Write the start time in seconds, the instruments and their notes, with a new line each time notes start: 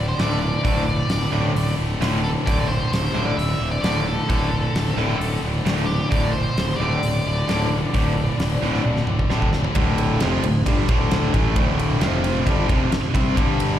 Already playing: fingered electric bass D1, distorted electric guitar D2 A2 D3
0.08 lead electric guitar C5
0.18 fingered electric bass D1, distorted electric guitar D2 A2 D3, lead electric guitar D5, snare, open hi-hat
0.40 distorted electric guitar D2 A2 D3, lead electric guitar D5
0.62 fingered electric bass D1, distorted electric guitar D2 A2 D3, kick, open hi-hat
0.86 distorted electric guitar D2 A2 D3
1.09 fingered electric bass D1, distorted electric guitar D2 A2 D3, snare, open hi-hat
1.32 fingered electric bass D1, distorted electric guitar D2 A2 D3
1.55 fingered electric bass D1, distorted electric guitar D2 A2 D3, open hi-hat
1.77 fingered electric bass D1, distorted electric guitar D2 A2 D3
2.01 fingered electric bass D1, distorted electric guitar D2 A2 D3, snare, open hi-hat
2.24 distorted electric guitar D2 A2 D3, lead electric guitar A4
2.46 fingered electric bass D1, distorted electric guitar D2 A2 D3, lead electric guitar D5, kick, open hi-hat
2.67 distorted electric guitar D2 A2 D3, lead electric guitar C5
2.91 fingered electric bass D1, distorted electric guitar D2 A2 D3, lead electric guitar C5, snare, open hi-hat
3.13 fingered electric bass D1, distorted electric guitar D2 A2 D3
3.25 lead electric guitar D5
3.37 fingered electric bass D1, distorted electric guitar D2 A2 D3, lead electric guitar E5, open hi-hat
3.60 fingered electric bass D1, distorted electric guitar D2 A2 D3
3.71 lead electric guitar D5
3.82 fingered electric bass D1, distorted electric guitar D2 A2 D3, lead electric guitar D5, snare, open hi-hat
4.05 distorted electric guitar D2 A2 D3, lead electric guitar A4
4.28 fingered electric bass D1, distorted electric guitar D2 A2 D3, kick, open hi-hat
4.51 distorted electric guitar D2 A2 D3
4.74 fingered electric bass D1, distorted electric guitar D2 A2 D3, snare, open hi-hat
4.97 fingered electric bass D1, distorted electric guitar D2 A2 D3
5.19 fingered electric bass D1, distorted electric guitar D2 A2 D3, open hi-hat
5.42 fingered electric bass D1, distorted electric guitar D2 A2 D3
5.64 fingered electric bass D1, distorted electric guitar D2 A2 D3, snare, open hi-hat
5.86 distorted electric guitar D2 A2 D3, lead electric guitar G4
6.09 fingered electric bass D1, distorted electric guitar D2 A2 D3, lead electric guitar D5, kick, open hi-hat
6.31 distorted electric guitar D2 A2 D3, lead electric guitar C5
6.55 fingered electric bass D1, distorted electric guitar D2 A2 D3, snare, open hi-hat
6.76 distorted electric guitar D2 A2 D3, lead electric guitar D5
6.80 fingered electric bass D1
7.02 fingered electric bass D1, distorted electric guitar D2 A2 D3, open hi-hat
7.25 fingered electric bass D1, distorted electric guitar D2 A2 D3
7.48 fingered electric bass D1, distorted electric guitar D2 A2 D3, snare, open hi-hat
7.70 distorted electric guitar D2 A2 D3
7.93 fingered electric bass D1, distorted electric guitar D2 A2 D3, kick, open hi-hat
8.15 distorted electric guitar D2 A2 D3
8.38 fingered electric bass D1, distorted electric guitar D2 A2 D3, snare, open hi-hat
8.62 fingered electric bass D1, distorted electric guitar D2 A2 D3
8.74 snare
8.84 fingered electric bass D1, distorted electric guitar D2 A2 D3, high tom
8.97 snare
9.06 fingered electric bass D1, distorted electric guitar D2 A2 D3, mid tom
9.19 kick
9.30 fingered electric bass D1, distorted electric guitar D2 A2 D3, snare
9.42 kick
9.53 distorted electric guitar D2 A2 D3, snare
9.64 floor tom
9.75 fingered electric bass D1, overdriven electric guitar D2 A2 D3, kick, ride
9.98 ride
10.20 fingered electric bass F1, overdriven electric guitar F2 C3 F3, snare, ride
10.43 fingered electric bass D1, overdriven electric guitar D2 A2, ride
10.66 fingered electric bass G1, overdriven electric guitar G2 D3 G3, kick, ride
10.89 fingered electric bass D1, overdriven electric guitar D2 A2 D3, kick, ride
11.11 snare, ride
11.34 fingered electric bass A1, overdriven electric guitar A2 E3 A3, kick, ride
11.56 fingered electric bass D1, overdriven electric guitar D2 A2 D3, kick, ride
11.79 ride
12.01 fingered electric bass F1, overdriven electric guitar F2 C3 F3, snare, ride
12.24 ride
12.45 fingered electric bass G1, overdriven electric guitar G2 D3 G3, kick, ride
12.68 fingered electric bass F1, overdriven electric guitar F2 C3 F3, kick, ride
12.90 muted overdriven electric guitar stroke, muted fingered electric bass stroke, muted distorted electric guitar stroke, snare, ride
13.14 fingered electric bass C2, overdriven electric guitar C3 G3 C4, kick, ride
13.35 fingered electric bass G1, distorted electric guitar G2 D3 G3, kick, ride
13.60 ride